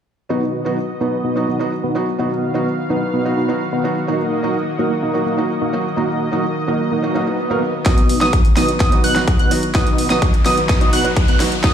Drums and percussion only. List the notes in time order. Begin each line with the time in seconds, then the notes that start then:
7.86 kick, snare, closed hi-hat
7.98 closed hi-hat
8.09 open hi-hat
8.21 snare, closed hi-hat
8.33 kick, closed hi-hat
8.45 closed hi-hat
8.57 snare, open hi-hat
8.68 closed hi-hat
8.80 kick, snare, closed hi-hat
8.92 closed hi-hat
9.04 open hi-hat
9.16 snare, closed hi-hat
9.28 kick, closed hi-hat
9.39 closed hi-hat
9.51 open hi-hat
9.63 closed hi-hat
9.75 kick, snare, closed hi-hat
9.87 closed hi-hat
9.98 open hi-hat
10.10 snare, closed hi-hat
10.22 kick, closed hi-hat
10.34 closed hi-hat
10.46 snare, open hi-hat
10.57 closed hi-hat
10.69 kick, snare, closed hi-hat
10.81 closed hi-hat
10.93 open hi-hat
11.05 closed hi-hat
11.16 kick, closed hi-hat
11.28 closed hi-hat
11.40 snare, open hi-hat
11.52 closed hi-hat
11.64 kick, snare, closed hi-hat